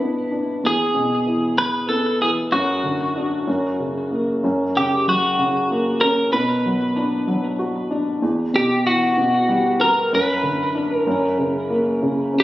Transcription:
0.00 0.58 B2 medium
0.00 0.27 G3 soft
0.00 0.64 B3 soft
0.00 0.30 D4 soft
0.31 0.62 D4 soft
0.63 2.49 E2 medium
0.63 1.58 G#4 medium
0.94 2.17 B2 soft
1.26 2.19 E3 soft
1.58 1.88 B4 medium
1.89 2.51 B3 soft
1.89 2.21 A4 medium
2.21 2.51 E3 soft
2.21 2.30 G#4 medium
2.52 3.45 F#2 medium
2.52 3.76 F#4 medium
2.84 3.46 D3 soft
3.16 3.47 D4 soft
3.47 4.41 F#2 medium
3.80 4.42 C#3 soft
4.11 4.43 A#3 soft
4.44 6.30 F#2 medium
4.76 5.37 C#3 soft
4.76 5.09 G4 medium
5.07 6.30 F#3 soft
5.07 6.01 F#4 medium
5.38 6.31 C#3 soft
5.71 6.32 A#3 soft
6.01 6.33 C#4 medium
6.01 6.32 A#4 medium
6.33 8.19 B2 medium
6.33 7.55 B4 medium
6.65 7.26 F#3 soft
6.96 7.89 D4 soft
7.27 8.19 F#3 soft
7.59 8.20 F#4 soft
7.91 8.21 D4 medium
8.22 10.07 E2 medium
8.54 9.16 B2 soft
8.54 8.86 G4 medium
8.85 10.08 E3 soft
8.85 9.83 F#4 medium
9.17 10.09 B2 soft
9.49 10.10 G3 medium
9.79 10.10 B3 medium
9.79 10.13 A#4 medium
10.13 11.05 F#2 medium
10.13 10.95 B4 medium
10.43 11.05 D3 soft
10.75 11.06 D4 soft
10.95 11.37 A#4 medium
11.07 12.44 F#2 medium
11.38 12.01 C#3 soft
11.70 12.44 A#3 soft
12.02 12.44 C#3 soft
12.34 12.44 C#4 soft
12.40 12.44 G4 medium

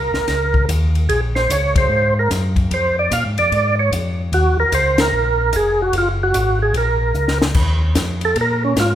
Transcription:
0.00 0.11 C2 medium
0.00 0.65 A#4 medium
0.13 0.20 C2 soft
0.13 snare soft
0.28 0.67 C#2 medium
0.28 kick soft
0.28 snare soft
0.28 ride medium
0.54 kick medium
0.69 1.08 D#2 medium
0.69 kick soft
0.69 hi-hat pedal soft
0.69 ride medium
0.95 ride soft
1.09 1.48 A#1 medium
1.09 1.21 G#4 medium
1.09 kick soft
1.09 ride medium
1.35 1.50 C5 medium
1.35 snare soft
1.49 1.88 C#2 medium
1.49 1.74 C#5 medium
1.49 kick soft
1.49 hi-hat pedal medium
1.49 ride medium
1.76 2.14 C5 medium
1.76 kick medium
1.76 ride medium
1.89 2.29 G#2 medium
2.19 2.31 A#4 medium
2.30 2.69 F#2 medium
2.30 kick soft
2.30 snare soft
2.30 hi-hat pedal soft
2.30 ride medium
2.56 kick medium
2.56 ride soft
2.71 3.10 F2 medium
2.71 2.96 C5 medium
2.71 kick soft
2.71 ride medium
2.99 3.13 D5 medium
3.11 3.24 A#2 medium
3.11 3.24 F5 medium
3.11 kick soft
3.11 hi-hat pedal medium
3.11 ride medium
3.26 3.38 G#2 medium
3.38 3.51 F2 medium
3.38 3.75 D5 loud
3.38 ride soft
3.52 3.91 G#2 medium
3.52 kick soft
3.52 ride soft
3.79 3.92 C#5 medium
3.92 4.31 F2 medium
3.92 kick soft
3.92 hi-hat pedal soft
3.92 ride medium
4.32 4.56 D#2 medium
4.32 4.57 F#4 loud
4.32 kick soft
4.32 ride medium
4.58 4.65 D#2 soft
4.58 4.74 A#4 loud
4.72 5.12 C#2 medium
4.72 5.00 C5 medium
4.72 kick soft
4.72 hi-hat pedal soft
4.72 ride medium
4.98 5.56 A#4 loud
4.98 snare medium
4.98 ride medium
5.12 5.52 A#1 medium
5.53 5.92 F1 medium
5.53 5.81 G#4 medium
5.53 kick soft
5.53 hi-hat pedal medium
5.53 ride medium
5.82 5.96 F#4 medium
5.93 6.33 F#1 medium
5.93 kick soft
5.93 ride medium
5.98 6.09 F4 medium
6.23 6.59 F#4 medium
6.34 6.73 G#1 medium
6.34 kick soft
6.34 hi-hat pedal medium
6.34 ride medium
6.62 6.76 G#4 medium
6.74 7.13 A#1 medium
6.74 7.38 A#4 medium
6.74 kick soft
6.74 ride medium
7.14 7.54 C#2 medium
7.14 hi-hat pedal medium
7.28 snare soft
7.42 snare medium
7.54 7.94 D#2 medium
7.54 kick medium
7.54 crash medium
7.95 8.35 F2 medium
7.95 kick soft
7.95 snare medium
7.95 hi-hat pedal medium
7.95 ride medium
8.21 8.37 A4 medium
8.21 ride soft
8.36 8.75 A#2 medium
8.36 kick soft
8.36 ride medium
8.41 8.64 A#4 medium
8.64 8.77 C#4 medium
8.76 8.95 G#2 medium
8.76 8.95 F4 medium
8.76 kick soft
8.76 snare medium
8.76 hi-hat pedal soft
8.76 ride medium

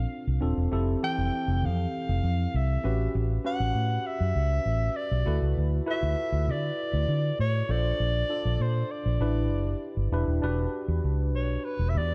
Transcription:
0.00 0.41 C4 medium
0.00 0.41 D4 medium
0.00 0.42 F4 medium
0.00 0.42 A4 medium
0.00 0.43 F5 loud
0.27 0.38 C2 medium
0.41 0.53 D#1 medium
0.41 0.64 C4 medium
0.41 0.65 D4 medium
0.41 0.65 F4 medium
0.41 0.65 A4 medium
0.58 0.68 E1 medium
0.72 0.94 F1 loud
0.72 0.95 C4 medium
0.72 0.95 E4 medium
0.72 0.95 G4 medium
0.72 0.95 A4 medium
1.03 1.95 E3 medium
1.03 1.94 C4 medium
1.03 1.95 G4 medium
1.03 1.95 A4 medium
1.03 1.67 G5 loud
1.18 1.29 F1 medium
1.48 1.65 F1 medium
1.63 1.85 F2 medium
1.63 2.58 F5 medium
2.09 2.20 F1 medium
2.24 2.46 F2 loud
2.54 2.76 C2 medium
2.54 3.16 E5 medium
2.84 3.07 A1 medium
2.84 3.32 C#4 medium
2.84 3.33 F#4 medium
2.84 3.33 G4 medium
2.84 3.33 B4 medium
3.15 3.37 A1 medium
3.45 4.37 C#4 medium
3.45 4.37 F#4 medium
3.45 4.37 G4 medium
3.45 4.37 B4 medium
3.45 4.08 F#5 loud
3.60 3.71 A1 medium
3.75 3.97 A2 medium
4.06 4.98 E5 medium
4.21 4.32 F#2 medium
4.36 4.58 C#2 medium
4.66 4.88 A1 medium
4.96 5.57 D5 medium
5.11 5.23 B1 medium
5.26 5.38 D2 medium
5.26 5.75 E4 medium
5.26 5.75 F#4 medium
5.26 5.75 A4 medium
5.26 5.75 B4 medium
5.42 5.53 C#2 medium
5.57 5.79 D2 medium
5.86 6.79 E4 medium
5.86 5.94 F4 medium
5.86 6.79 A4 medium
5.86 6.79 B4 medium
5.90 6.82 F#4 medium
5.90 6.53 E5 loud
6.03 6.14 D2 loud
6.32 6.49 D2 medium
6.48 6.70 D3 medium
6.48 7.40 D5 medium
6.93 7.04 D2 medium
7.08 7.30 D3 medium
7.39 7.61 A2 medium
7.39 7.72 C#5 medium
7.69 7.91 A#1 medium
7.69 8.18 D4 medium
7.69 8.18 F4 medium
7.69 8.18 A4 medium
7.69 8.18 C5 medium
7.69 8.63 D5 loud
8.00 8.22 A#1 loud
8.29 9.19 D4 medium
8.29 9.21 F4 medium
8.29 9.21 A4 medium
8.29 9.22 D5 medium
8.45 8.56 A#1 medium
8.60 8.82 A#2 medium
8.60 8.92 C5 medium
8.91 9.82 D5 medium
9.06 9.17 A#1 medium
9.20 9.51 A1 loud
9.20 9.94 D4 medium
9.20 9.94 E4 medium
9.20 9.94 G4 medium
9.20 9.94 B4 medium
9.51 9.74 F#1 medium
9.97 10.08 G1 medium
10.12 10.23 E1 medium
10.12 10.35 D4 medium
10.12 10.36 E4 medium
10.12 10.36 G4 medium
10.12 10.36 B4 medium
10.28 10.39 D#1 medium
10.42 10.65 E1 medium
10.42 11.35 D4 medium
10.42 11.35 F#4 medium
10.42 11.35 G4 medium
10.42 11.35 B4 medium
10.88 10.99 E2 medium
11.04 11.34 C#2 medium
11.34 11.56 B1 medium
11.34 11.66 C#5 medium
11.64 11.91 B4 medium
11.79 11.96 E1 medium
11.89 11.99 E5 medium
11.95 12.14 E2 medium
11.95 12.14 D5 loud

